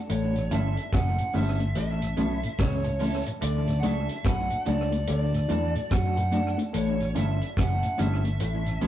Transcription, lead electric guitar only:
0.11 C#5
0.53 E5
0.94 F#5
1.36 E5
1.78 E5
2.60 C#5
3.44 D5
3.80 F#5
3.86 E5
4.27 F#5
4.69 D5
5.11 D5
5.93 F#5
6.76 C#5
7.18 E5
7.60 F#5
8.02 E5

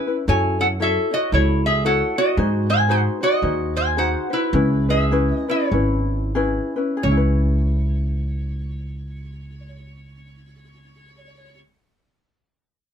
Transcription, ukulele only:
0.07 C#4 E4 B4
0.28 E4 F#4 A4 C#5
0.59 E4 F#4 C#5
0.80 E4 F#4 A4 C#5
1.11 E4 F#4 C#5
1.32 E4 F#4 A4 C#5
1.85 E4 F#4 A4 C#5
2.17 E4 F#4 C#5
2.37 D#4 F#4 G#4 C5
2.69 D#4 F#4 C5
2.89 D#4 F#4 G#4 C5
3.21 D#4 F#4 C5
3.42 D#4 F#4 G#4 C5
3.97 D#4 F#4 G#4 C5
4.30 D#4 F#4 C5
4.54 C#4 E4 G#4 B4
4.89 C#4 E4 B4
5.11 C#4 E4 G#4 B4
5.48 C#4 E4 B4
5.72 C#4 E4 G#4 B4
6.35 C#4 E4 G#4 B4
6.76 C#4 E4 B4
6.97 G#4
7.05 C#4
7.11 E4
7.17 B4

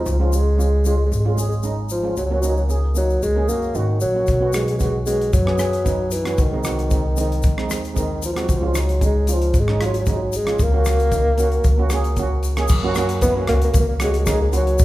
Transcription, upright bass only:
0.06 C#2
1.12 G#1
2.17 C#2
3.23 C#2
3.49 F#1
3.75 G#1
4.02 A#1
4.28 B1
5.33 F#2
6.38 C2
7.44 D#2
8.48 C#2
9.54 G#1
10.59 C#2
11.64 C#2
12.70 F#2
13.49 C#2
13.74 C#2
14.80 F#2

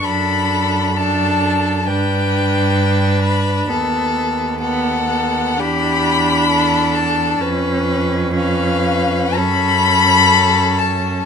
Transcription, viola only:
0.04 D4
0.97 D4
1.88 D4
3.69 B3
4.61 B3
5.09 B3
5.58 D4
7.40 C#4
8.34 C#4
9.35 C#4

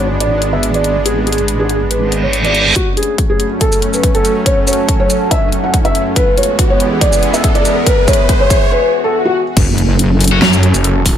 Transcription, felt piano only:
0.20 D5
0.53 E5
0.74 D5
1.06 G#4
1.27 G#4
1.59 G#4
1.91 B4
2.23 C#5
2.44 D5
2.76 F#4
2.97 G#4
3.30 G#4
3.61 A4
3.93 B4
4.15 A4
4.46 C#5
4.67 C#5
5.00 C#5
5.31 E5
5.64 F#5
5.85 E5
6.16 B4
6.37 C#5
6.70 C#5
7.01 D5
7.34 E5
7.55 D5
7.87 B4
8.08 C#5
8.40 C#5
8.72 B4
9.04 A4
9.25 F#4

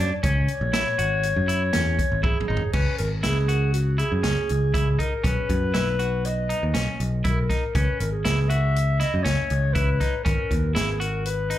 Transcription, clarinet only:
0.00 D5
0.24 C#5
2.23 G#4
2.73 B4
2.98 A#4
3.24 G#4
3.73 F#4
3.99 G#4
5.00 A#4
5.26 B4
6.25 D#5
7.26 A#4
7.75 B4
7.99 A#4
8.12 G#4
8.48 E5
9.00 D#5
9.23 C#5
9.73 B4
10.23 A#4
10.74 G#4
10.99 A#4
11.25 B4

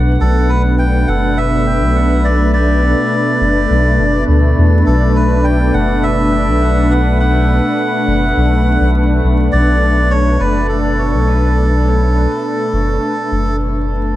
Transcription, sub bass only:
Already playing: B1
0.21 B1
1.08 F#1
1.81 B1
3.41 F#1
3.70 B1
3.99 F#1
4.28 D2
4.58 E2
4.87 B1
5.74 F#1
6.47 B1
8.07 F#1
8.37 B1
8.80 B1
9.24 B1
9.53 B1
10.40 F#1
11.13 B1
12.73 F#1
13.32 F#1

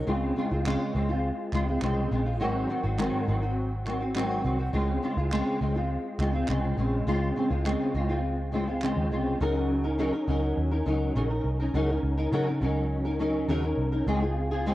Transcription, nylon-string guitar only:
0.07 C#3 G#3 C4 F4
0.36 C#3 G#3 C4 F4
0.51 G#3 C4 F4
0.65 C#3 G#3 C4 F4
0.94 C#3 G#3 C4 F4
1.09 G#3 C4 F4
1.53 C#3 G#3 C4 F4
1.68 G#3 C4 F4
1.82 C#3 G#3 C4 F4
2.11 C#3 G#3 C4 F4
2.25 G#3 C4 F4
2.40 G#2 D#3 F#3 C4 F#4
2.69 D#3 F#3 C4 F#4
2.83 F#3 C4 F#4
2.98 G#2 D#3 F#3 C4 F#4
3.27 D#3 F#3 C4 F#4
3.42 F#3 C4 F#4
3.86 D#3 F#3 C4 F#4
4.00 F#3 C4 F#4
4.15 G#2 D#3 F#3 C4 F#4
4.44 D#3 F#3 C4 F#4
4.59 F#3 C4 F#4
4.73 C#3 G#3 C4 F4
5.02 C#3 G#3 C4 F4
5.17 G#3 C4 F4
5.32 C#3 G#3 C4 F4
5.61 C#3 G#3 C4 F4
5.75 G#3 C4 F4
6.19 C#3 G#3 C4 F4
6.34 G#3 C4 F4
6.49 C#3 G#3 C4 F4
6.77 C#3 G#3 C4 F4
7.07 C#3 G#3 C4 F4
7.36 C#3 G#3 C4 F4
7.50 G#3 C4 F4
7.65 C#3 G#3 C4 F4
7.94 C#3 G#3 C4 F4
8.09 G#3 C4 F4
8.52 C#3 G#3 C4 F4
8.67 G#3 C4 F4
8.82 C#3 G#3 C4 F4
9.11 C#3 G#3 C4 F4
9.40 C#3 F#3 C#4 D#4 A#4
9.84 C#4 D#4 A#4
9.98 C#3 F#3 C#4 D#4 A#4
10.13 C#4 D#4 A#4
10.28 F#3 C#4 D#4 A#4
10.71 C#4 D#4 A#4
10.86 F#3 C#4 D#4 A#4
11.16 C#3 F#3 C#4 D#4 A#4
11.29 C#4 D#4 A#4
11.59 C#4 D#4 A#4
11.74 C#3 F#3 C#4 D#4 A#4
11.89 C#4 D#4 A#4
12.17 C#4 D#4 A#4
12.32 C#3 F#3 C#4 D#4 A#4
12.47 C#4 D#4 A#4
12.61 F#3 C#4 D#4 A#4
13.05 C#4 D#4 A#4
13.19 F#3 C#4 D#4 A#4
13.48 C#3 F#3 C#4 D#4 A#4
13.63 C#4 D#4 A#4
13.92 C#4 D#4 A#4
14.07 C#3 G#3 C4 F4 G#4
14.21 C4 F4 G#4
14.51 C4 F4 G#4
14.66 C#3 G#3 C4 F4 G#4

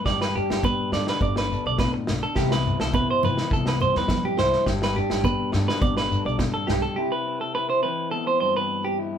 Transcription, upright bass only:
0.05 G1
0.50 G1
0.92 G2
1.21 G1
1.66 B1
2.08 B1
2.36 C2
2.80 C2
3.23 C3
3.51 C2
3.96 E2
4.38 C2
4.66 G1
5.11 G1
5.54 G2
5.81 G1
6.25 B1
6.69 B1

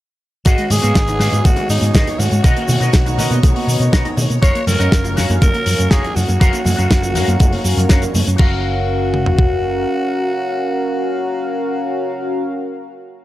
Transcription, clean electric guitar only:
0.45 F#4 G#4 B4 D#5
0.82 F#4 G#4 B4 F5
1.07 muted clean electric guitar stroke
1.19 F#4 G#4 B4 F5
1.57 muted clean electric guitar stroke
1.81 muted clean electric guitar stroke
1.93 F#4 G#4 B4 D#5
2.19 muted clean electric guitar stroke
2.43 F#4 A#4 B4 D#5
2.81 F#4 A#4 B4 D#5
3.06 muted clean electric guitar stroke
3.18 F#4 A#4 B4 D#5
3.56 muted clean electric guitar stroke
3.80 muted clean electric guitar stroke
3.92 F#4 A#4 B4 D#5
4.17 muted clean electric guitar stroke
4.41 F#4 A#4 C#5 F5
4.79 F#4 A#4 C#5 D#5
5.04 muted clean electric guitar stroke
5.16 F#4 A#4 C#5 F5
5.54 muted clean electric guitar stroke
5.79 muted clean electric guitar stroke
5.90 F#4 A#4 C#5 F5
6.17 muted clean electric guitar stroke
6.40 F#4 A#4 C#5 F5
6.77 F#4 A#4 C#5 F5
7.02 muted clean electric guitar stroke
7.14 F#4 A#4 C#5 F5
7.52 muted clean electric guitar stroke
7.76 muted clean electric guitar stroke
7.89 F#4 A#4 C#5 F5
8.13 muted clean electric guitar stroke
8.36 F#4 A#4
8.41 F5

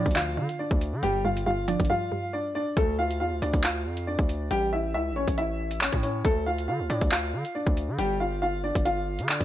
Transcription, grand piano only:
Already playing: D4 D5
0.16 F4 F5
0.59 D4 D5
1.03 G3 G4
1.25 F4 F5
1.46 F4 F5
1.68 D4 D5
1.90 F4 F5
2.33 D4 D5
2.55 D4 D5
2.77 A3 A4
2.99 F4 F5
3.20 F4 F5
3.42 D4 D5
3.64 F4 F5
4.07 D4 D5
4.51 G3 G4
4.73 E4 E5
4.94 E4 E5
5.16 C#4 C#5
5.38 E4 E5
5.81 C#4 C#5
6.03 C#4 C#5
6.25 A3 A4
6.46 F4 F5
6.68 F4 F5
6.90 D4 D5
7.12 F4 F5
7.55 D4 D5
7.98 G3 G4
8.20 F4 F5
8.42 F4 F5
8.64 D4 D5
8.85 F4 F5
9.29 D4 D5

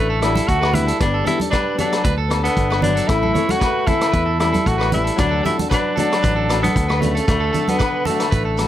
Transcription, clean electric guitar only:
0.10 A4
0.35 A4
0.61 B4
0.87 A4
1.14 A4
1.25 A4
1.51 B4
1.78 A4
2.04 B4
2.18 A4
2.44 A4
2.71 B4
2.96 A4
3.23 A4
3.34 C#5
3.60 B4
3.86 A4
4.12 B4
4.26 A4
4.53 A4
4.78 B4
5.04 A4
5.31 A4
5.43 A4
5.70 B4
5.96 A4
6.22 B4
6.36 A4
6.62 A4
6.88 B4
7.15 A4
7.40 A4
7.53 A4
7.79 B4
8.06 A4
8.31 B4
8.45 A4

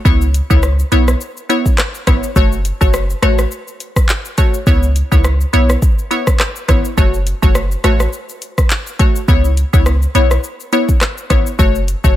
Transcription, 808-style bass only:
0.05 C#2
0.51 C#2
0.92 B1
2.07 G#1
2.36 F#1
2.81 F#1
3.23 A1
4.67 C#2
5.12 C#2
5.53 B1
6.69 G#1
6.98 F#1
7.43 F#1
7.84 A1
9.28 C#2
9.74 C#2
10.15 B1
11.30 G#1
11.59 F#1
12.04 F#1

